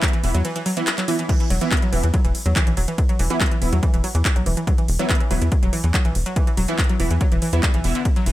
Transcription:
0.02 F#3, kick, clap, closed hi-hat, ride
0.08 closed hi-hat
0.13 E3, closed hi-hat, ride
0.24 E1 E3 B3 E4, open hi-hat, ride
0.35 E2 F#3, closed hi-hat, ride
0.45 E3, closed hi-hat, ride
0.56 E3, closed hi-hat, ride
0.66 F#3, open hi-hat, ride
0.77 E3 B3 E4, closed hi-hat, ride
0.87 clap, closed hi-hat, ride
0.98 F#3, clap, closed hi-hat, ride
1.08 E3 B3 E4, open hi-hat, ride
1.19 E3, closed hi-hat, ride
1.29 E3, kick, closed hi-hat, ride, crash
1.40 E3, closed hi-hat, ride
1.50 E1 F#3, open hi-hat, ride
1.61 E3 B3 E4, closed hi-hat, ride
1.71 kick, clap, closed hi-hat, ride
1.77 closed hi-hat
1.82 F#3, closed hi-hat, ride
1.93 E1 E3 B3 E4, open hi-hat, ride
2.03 E2 E3, closed hi-hat, ride
2.14 F#3, kick, closed hi-hat, ride
2.25 E1 E3, closed hi-hat, ride
2.35 open hi-hat, ride
2.46 E2 F#3, closed hi-hat, ride
2.56 E3, kick, clap, closed hi-hat, ride
2.67 B1 E3, closed hi-hat, ride
2.77 E1 F#3, open hi-hat, ride
2.88 E3, closed hi-hat, ride
2.98 kick, closed hi-hat, ride
3.09 F#3, closed hi-hat, ride
3.19 E1 E3, open hi-hat, ride
3.30 E3 B3 E4, closed hi-hat, ride
3.40 F#3, kick, clap, closed hi-hat, ride
3.46 closed hi-hat
3.51 E3, closed hi-hat, ride
3.62 E1 E3 B3 E4, open hi-hat, ride
3.73 E2 F#3, closed hi-hat, ride
3.83 E3, kick, closed hi-hat, ride
3.94 E1 E3, closed hi-hat, ride
4.04 F#3, open hi-hat, ride
4.15 E2 E3, closed hi-hat, ride
4.25 kick, clap, closed hi-hat, ride
4.36 B1 F#3, closed hi-hat, ride
4.46 E1 E3, open hi-hat, ride
4.57 E3, closed hi-hat, ride
4.67 F#3, kick, closed hi-hat, ride
4.78 E3, closed hi-hat, ride
4.88 E1, open hi-hat, ride
4.99 E3 F#3 B3 E4, closed hi-hat, ride
5.10 E3, kick, clap, closed hi-hat, ride
5.15 closed hi-hat
5.20 E3, closed hi-hat, ride
5.31 E1 E3 F#3 B3 E4, open hi-hat, ride
5.42 E2 E3, closed hi-hat, ride
5.52 kick, closed hi-hat, ride
5.63 E1 F#3, closed hi-hat, ride
5.73 E3, open hi-hat, ride
5.84 E2 E3, closed hi-hat, ride
5.94 F#3, kick, clap, closed hi-hat, ride
6.05 B1 E3, closed hi-hat, ride
6.15 E1, open hi-hat, ride
6.26 F#3, closed hi-hat, ride
6.36 E3, kick, closed hi-hat, ride
6.47 E3, closed hi-hat, ride
6.57 E1 F#3, open hi-hat, ride
6.68 E3 B3 E4, closed hi-hat, ride
6.78 kick, clap, closed hi-hat, ride
6.84 closed hi-hat
6.89 F#3, closed hi-hat, ride
7.00 E1 E3 B3 E4, open hi-hat, ride
7.11 E2 E3, closed hi-hat, ride
7.21 F#3, kick, closed hi-hat, ride
7.32 E1 E3, closed hi-hat, ride
7.42 E3, open hi-hat, ride
7.53 E2 E3 B3 E4, closed hi-hat, ride
7.63 G3, kick, clap, closed hi-hat, ride
7.74 B1 E3, closed hi-hat, ride
7.84 E1 E3 B3 E4, open hi-hat, ride
7.95 D3, closed hi-hat, ride
8.05 kick, closed hi-hat, ride
8.16 F#3, closed hi-hat, ride
8.26 E1 E3, open hi-hat, ride

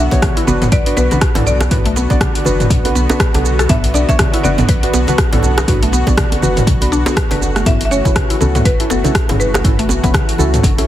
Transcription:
Already playing: D3 B3 D4 F#4 E5
0.11 B1 B3 D4 F#4 C#5, kick, closed hi-hat, djembe slap, high conga, shaker
0.22 kick, cross-stick, closed hi-hat, djembe tone, low conga, shaker
0.37 E4, closed hi-hat
0.47 F#1 B3 D4 F#4 B4, high conga, djembe tone, low conga, shaker
0.62 B3, closed hi-hat, mid tom, shaker
0.72 B1 B4 D5, kick, closed hi-hat, djembe tone, shaker
0.86 B3 D4 F#4 B4, closed hi-hat
0.97 B1 B3 B4, djembe slap, shaker
1.11 B3 D4 F#4 B4, closed hi-hat, high conga, djembe tone, low conga, shaker
1.21 F#4, kick, cross-stick, closed hi-hat, shaker
1.35 B1 B3 D4 E4 F#4 A4, closed hi-hat, mid tom, djembe slap, djembe tone, high conga
1.47 D5, shaker
1.60 cross-stick, closed hi-hat, djembe slap, djembe tone, shaker
1.71 B1 B3 D4 F#4 B4, kick, closed hi-hat, mid tom, high conga, shaker
1.85 A3, closed hi-hat
1.96 B3, djembe tone, shaker
2.10 B1 B3 D4 F#4 D5, kick, closed hi-hat, djembe slap, high conga, shaker
2.20 kick, cross-stick, closed hi-hat, djembe tone, low conga, shaker
2.35 closed hi-hat
2.45 F#1 B3 D4 F#4 B4, high conga, djembe tone, low conga, shaker
2.60 closed hi-hat, mid tom, shaker
2.70 B1, kick, closed hi-hat, high conga, low conga, shaker
2.85 B3 D4 F#4 B4, closed hi-hat, djembe tone
2.95 B1 B3, shaker
3.09 B3 D4 F#4 B4, closed hi-hat, djembe slap, djembe tone, shaker
3.20 B4, kick, cross-stick, closed hi-hat, shaker
3.34 B1 B3 D4 F#4 A4, closed hi-hat, djembe slap, djembe tone, low conga
3.45 shaker
3.59 A4, cross-stick, closed hi-hat, shaker
3.69 B1 B3 D4 F#4 B4 E5, kick, closed hi-hat, mid tom, djembe tone, shaker
3.84 closed hi-hat
3.94 D4 D5, djembe tone, shaker
4.09 B1 B3 D4 F#4 C#5 E5, kick, closed hi-hat, djembe slap, high conga, shaker
4.19 kick, cross-stick, closed hi-hat, djembe tone, low conga, shaker
4.34 E4, closed hi-hat
4.43 F#1 B3 D4 F#4 B4 D5, high conga, low conga, shaker
4.58 B3, closed hi-hat, mid tom, djembe tone, shaker
4.69 B1 B4, kick, closed hi-hat, shaker
4.83 B3 D4 F#4 B4, closed hi-hat, djembe tone
4.93 B1 B3, djembe slap, shaker
5.07 B3 D4 F#4 B4, closed hi-hat, djembe tone, high conga, low conga, shaker
5.18 F#4, kick, cross-stick, closed hi-hat, shaker
5.33 B1 B3 D4 E4 F#4 A4, closed hi-hat, mid tom, djembe slap, high conga
5.43 djembe tone, shaker
5.58 cross-stick, closed hi-hat, djembe slap, shaker
5.68 B1 B3 D4 F#4 B4, kick, closed hi-hat, mid tom, high conga, djembe tone, shaker
5.83 A3, closed hi-hat
5.92 B3, djembe tone, shaker
6.06 B1 B3 D4 F#4 D5, kick, closed hi-hat, djembe slap, high conga, shaker
6.17 kick, cross-stick, closed hi-hat, low conga, shaker
6.32 closed hi-hat, djembe tone
6.42 F#1 B3 D4 F#4 B4, high conga, low conga, shaker
6.56 closed hi-hat, mid tom, djembe tone, shaker
6.67 B1, kick, closed hi-hat, high conga, low conga, shaker
6.81 B3 D4 F#4 B4, closed hi-hat, djembe tone
6.92 B1 D4, shaker
7.06 B3 D4 F#4 B4, closed hi-hat, djembe slap, shaker
7.17 B4, kick, cross-stick, closed hi-hat, djembe tone, shaker
7.31 F#1 B3 D4 F#4 A4 B4, closed hi-hat, djembe slap, low conga
7.42 djembe tone, shaker
7.56 A3, cross-stick, closed hi-hat, shaker
7.65 F#1 E3 A3 B3 C#4 E4 F#4 A4 E5, kick, closed hi-hat, mid tom, high conga, shaker
7.81 closed hi-hat, djembe tone
7.85 E5
7.91 C#4 C#5, shaker
8.05 F#1 C#4 E4 F#4 B4, kick, closed hi-hat, djembe slap, high conga, shaker
8.16 kick, cross-stick, closed hi-hat, djembe tone, low conga, shaker
8.30 E4, closed hi-hat
8.41 C#2 B3 C#4 E4 F#4 A4, high conga, djembe tone, low conga, shaker
8.55 B3, closed hi-hat, mid tom, shaker
8.65 F#1 B4, kick, closed hi-hat, djembe tone, shaker
8.80 C#4 E4 F#4 A4, closed hi-hat
8.90 F#1 B3 A4, djembe slap, shaker
9.04 C#4 E4 F#4 A4, closed hi-hat, djembe tone, high conga, low conga, shaker
9.15 F#4, kick, cross-stick, closed hi-hat, shaker
9.29 F#1 C#4 E4 F#4 G#4, closed hi-hat, mid tom, djembe slap, high conga, djembe tone
9.40 B4, shaker
9.54 cross-stick, closed hi-hat, djembe slap, djembe tone, shaker
9.64 F#1 C#4 E4 F#4 A4, kick, closed hi-hat, mid tom, high conga, shaker
9.79 A3, closed hi-hat
9.89 B3, djembe tone, shaker
10.03 F#1 B3 C#4 E4 F#4 B4, kick, closed hi-hat, djembe slap, high conga, shaker
10.14 kick, cross-stick, closed hi-hat, djembe tone, low conga, shaker
10.29 closed hi-hat
10.38 C#2 C#4 E4 F#4 A4, high conga, djembe tone, low conga, shaker
10.54 closed hi-hat, mid tom, shaker
10.63 F#1, kick, closed hi-hat, high conga, low conga, shaker
10.78 C#4 E4 F#4 A4, closed hi-hat, djembe tone

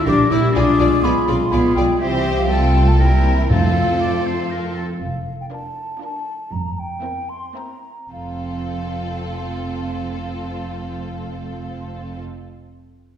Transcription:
0.06 A#1 G3 D4 G4 A#4 D5 D6
0.31 A#1 E4 G4 A#4 D5 E6
0.54 B1 G#3 D4 F4 G#4 D5 D6
0.78 B1 F4 G#4 D5
1.03 B1 B3 F4 G#4 D5 B5
1.27 B1 C4 F4 G#4 D5 C6
1.51 B1 B3 F4 G#4 D5 B5
1.75 B1 G3 F4 G#4 D5 G5
1.99 C2 E3 G3 C4 G4 C5 E5
2.38 F3 F5
2.48 G3 A3 C4 F4 A4 G5
2.88 A3 A5
2.99 G3 A#3 C4 E4 A#4 G5
3.38 E3 E5
3.49 F2 F3 A3 C4 F4 A4 F5
4.00 D5
4.26 C5
4.51 A#4
4.76 A4
5.02 F1 F2 F5
5.41 G5
5.51 D4 F4 A#4 A5
6.01 D4 F4 A#4 A5
6.52 F1 F2 A#5
6.79 G5
7.03 C4 E4 A#4
7.29 C6
7.56 C4 E4 A#4 A#5
8.10 F1 F2 C4 F4 A4 F5

